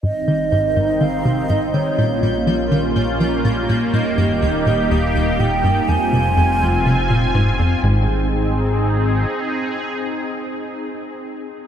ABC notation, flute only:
X:1
M:4/4
L:1/8
Q:1/4=123
K:Ab
V:1 name="Flute"
e4 f2 e d- | d3 z4 z | e4 f2 g2 | a6 z2 |
z8 | z8 |]